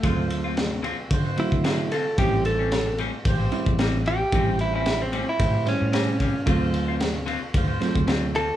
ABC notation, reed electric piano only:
X:1
M:4/4
L:1/16
Q:"Swing 16ths" 1/4=112
K:D
V:1 name="Reed electric piano"
[F,A,=C^E]4- [F,A,CE] z4 z [F,A,CF]4 z2 | [G,^B,CE]4- [G,B,CE] z4 z [G,B,CE]4 z2 | [G,^B,CE]4- [G,B,CE] z4 z [G,CE^B]4 z2 | [F,A,=C^E]4- [F,A,CE] z4 z [F,A,CE]4 z2 |]